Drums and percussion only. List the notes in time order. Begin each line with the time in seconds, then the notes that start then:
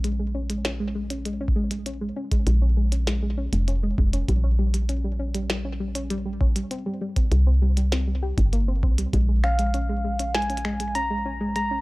0.04 closed hi-hat
0.50 closed hi-hat
0.65 snare, closed hi-hat
1.10 closed hi-hat
1.25 closed hi-hat
1.48 kick
1.71 closed hi-hat
1.86 closed hi-hat
2.32 kick, closed hi-hat
2.47 closed hi-hat
2.92 closed hi-hat
3.07 snare, closed hi-hat
3.53 closed hi-hat
3.68 closed hi-hat
3.98 kick
4.13 closed hi-hat
4.29 kick, closed hi-hat
4.74 closed hi-hat
4.89 closed hi-hat
5.35 closed hi-hat
5.50 snare, closed hi-hat
5.95 closed hi-hat
6.10 closed hi-hat
6.41 kick
6.56 closed hi-hat
6.71 closed hi-hat
7.16 kick, closed hi-hat
7.32 closed hi-hat
7.77 closed hi-hat
7.92 snare, closed hi-hat
8.38 kick, closed hi-hat
8.53 closed hi-hat
8.83 kick
8.98 closed hi-hat
9.13 kick, closed hi-hat
9.44 finger snap
9.59 closed hi-hat
9.74 closed hi-hat
10.19 closed hi-hat
10.35 snare, closed hi-hat
10.42 closed hi-hat
10.50 closed hi-hat
10.57 closed hi-hat
10.65 finger snap
10.80 closed hi-hat
10.95 closed hi-hat
11.56 closed hi-hat